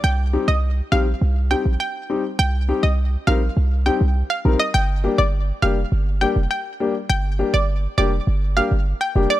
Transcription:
X:1
M:4/4
L:1/16
Q:1/4=102
K:Cm
V:1 name="Synth pluck"
g2 z e z2 f z3 g z g3 z | g2 z e z2 f z3 g z2 f z e | g2 z d z2 f z3 g z g3 z | g2 z d z2 d z3 f z2 g z d |]
V:2 name="Grand piano"
z2 [G,CEG]2 z2 [G,CEG]2 z2 [G,CEG]2 z2 [G,CEG]2 | z2 [G,CEG]2 z2 [G,CEB]2 z2 [G,CEG]2 z2 [G,CEB]2 | z2 [G,B,DG]2 z2 [G,B,DG]2 z2 [G,B,DG]2 z2 [G,B,DG]2 | z2 [G,B,DG]2 z2 [G,B,DG]2 z2 [G,B,DG]2 z2 [G,B,DG]2 |]
V:3 name="808-style bass" clef=bass
C,,3 C,,3 B,,,2 C,,3 B,,, z4 | C,,3 C,,3 B,,,2 C,,3 C,,2 z B,,, z | G,,,3 G,,,3 F,,,2 G,,,3 F,,, z4 | G,,,3 G,,,3 F,,,2 G,,,3 G,,,2 z F,,, z |]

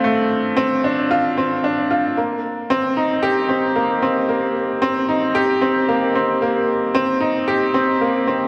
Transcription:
X:1
M:4/4
L:1/8
Q:1/4=113
K:Cdor
V:1 name="Upright piano"
A, z C D F C D F | B, z C E G C B, C | B, z C E G C B, C | B, z C E G C B, C |]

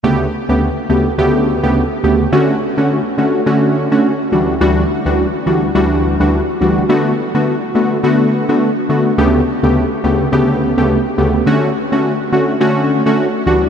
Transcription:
X:1
M:4/4
L:1/16
Q:"Swing 16ths" 1/4=105
K:D
V:1 name="Synth keys"
[D,,C,A,B,G]2 z [D,,C,A,B,G] z2 [D,,C,A,B,G]2 [D,,C,A,B,G]3 [D,,C,A,B,G] z2 [D,,C,A,B,G]2 | [D,A,CF]2 z [D,A,CF] z2 [D,A,CF]2 [D,A,CF]3 [D,A,CF] z2 [D,,E,G,DF]2 | [D,,E,G,DF]2 z [D,,E,G,DF] z2 [D,,E,G,DF]2 [D,,E,G,DF]3 [D,,E,G,DF] z2 [D,,E,G,DF]2 | [D,A,B,F]2 z [D,A,B,F] z2 [D,A,B,F]2 [D,A,B,F]3 [D,A,B,F] z2 [D,A,B,F]2 |
[D,,C,A,B,G]2 z [D,,C,A,B,G] z2 [D,,C,A,B,G]2 [D,,C,A,B,G]3 [D,,C,A,B,G] z2 [D,,C,A,B,G]2 | [D,A,CF]2 z [D,A,CF] z2 [D,A,CF]2 [D,A,CF]3 [D,A,CF] z2 [D,,E,G,DF]2 |]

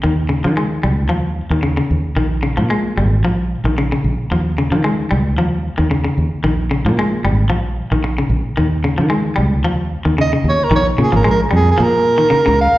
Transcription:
X:1
M:4/4
L:1/16
Q:"Swing 16ths" 1/4=112
K:Bbdor
V:1 name="Soprano saxophone"
z16 | z16 | z16 | z16 |
z12 e2 d B | d2 A B B2 A A B6 f2 |]
V:2 name="Clean electric guitar" clef=bass
E,2 D, F, A,2 G,2 F,2 z E, D, D,2 z | E,2 D, F, A,2 G,2 F,2 z E, D, D,2 z | F,2 D, F, A,2 G,2 F,2 z E, D, D,2 z | E,2 D, F, A,2 G,2 F,2 z E, z D,2 z |
E,2 D, F, A,2 G,2 F,2 z E, D, D,2 z | E,2 D, F, A,2 G,2 F,2 z E, D, D,2 z |]
V:3 name="Fingered electric bass" clef=bass
E,,3 E,3 D,,2 E,,3 E,,3 E,, z | B,,,3 B,,3 A,,,2 B,,,3 B,,,3 B,,, z | E,,3 E,3 D,,2 E,,3 E,,3 E,, z | B,,,3 B,,3 A,,,2 B,,,3 B,,,3 B,,, z |
E,,3 E,3 D,,2 E,,3 E,,3 E,, z | B,,,2 B,, A,,, B,,,2 F,,2 B,,4 z D,,2 z |]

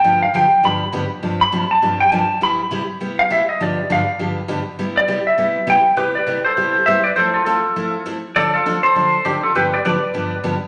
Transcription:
X:1
M:4/4
L:1/16
Q:"Swing" 1/4=202
K:C
V:1 name="Electric slide guitar"
g2 f2 g4 b6 z2 | z2 b4 a4 g2 a4 | b6 z4 f2 e2 _e2 | d4 f4 z8 |
z2 d4 e6 g3 z | [GB]2 [Bd]4 [Ac]6 [ce]2 [Bd]2 | [Ac]2 [FA]2 [FA]8 z4 | [Ad]2 [FA]4 [Ac]6 [DG]2 [FA]2 |
[GB]2 [Bd]2 [Bd]8 z4 |]
V:2 name="Steel-string acoustic guitar"
[G,,D,F,B,DG]2 z2 [G,,D,F,B,DG]2 z2 [G,,D,F,B,DG]2 z2 [G,,D,F,B,DG]2 z2 | [G,,C,F,CDG]2 z2 [G,,C,F,CDG]2 z2 [G,,C,F,CDG]2 z2 [G,,C,F,CDG]2 z2 | [C,G,B,EG]2 z2 [C,G,B,EG]2 z2 [C,G,B,EG]2 z2 [C,G,B,EG]2 z2 | [G,,D,F,B,DG]2 z2 [G,,D,F,B,DG]2 z2 [G,,D,F,B,DG]2 z2 [G,,D,F,B,DG]2 z2 |
[C,G,B,EG]2 z2 [C,G,B,EG]2 z2 [C,G,B,EG]2 z2 [C,G,B,EG]2 z2 | [C,G,B,EG]2 z2 [C,G,B,EG]2 z2 [C,G,B,EG]2 z2 [C,G,B,EG]2 z2 | [F,A,CEA]2 z2 [F,A,CEA]2 z2 [F,A,CEA]2 z2 [F,A,CEA]2 z2 | [D,F,CDA]2 z2 [D,F,CDA]2 z2 [D,F,CDA]2 z2 [D,F,CDA]2 z2 |
[G,,D,F,B,DG]2 z2 [G,,D,F,B,DG]2 z2 [G,,D,F,B,DG]2 z2 [G,,D,F,B,DG]2 z2 |]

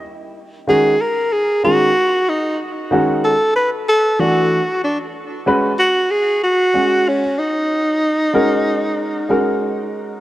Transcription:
X:1
M:4/4
L:1/8
Q:"Swing 16ths" 1/4=94
K:D#phr
V:1 name="Tenor saxophone"
z2 G A G F2 D | z2 =A B A F2 =D | z2 F G F2 C D- | D6 z2 |]
V:2 name="Upright piano"
z2 [D,G,CF] z2 [D,G,CG] z2 | z [D,G,CF] z3 [E,=A,=DF] z2 | z [G,CFB] z3 [G,CFG] z2 | z2 [G,CFA]3 [G,CFA]3 |]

